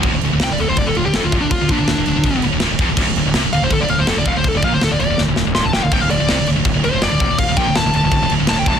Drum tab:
CC |xxxxxxxx|xxxxxxxx|xxxxxxxx|xxxx----|
SD |--o---o-|--o---o-|--o---o-|--o-oooo|
BD |o---o--o|oo--o--o|o---o--o|oo------|

CC |xxxxxxxx|xxxxxxxx|
SD |--o---o-|--o---o-|
BD |o---o--o|oo--o--o|